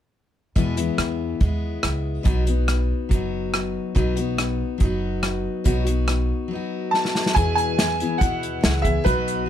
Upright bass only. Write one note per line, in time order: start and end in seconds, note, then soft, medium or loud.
0.56 0.88 E2 medium
0.98 1.34 E2 medium
1.41 1.77 D#2 medium
1.84 2.20 C#2 medium
2.26 2.91 B1 medium
3.11 3.76 F#1 medium
3.96 4.61 B1 medium
4.81 5.46 F#1 medium
5.66 6.31 B1 medium
7.37 8.01 E2 medium
8.21 8.57 D#2 medium
8.63 9.00 C#2 medium
9.06 9.49 B1 medium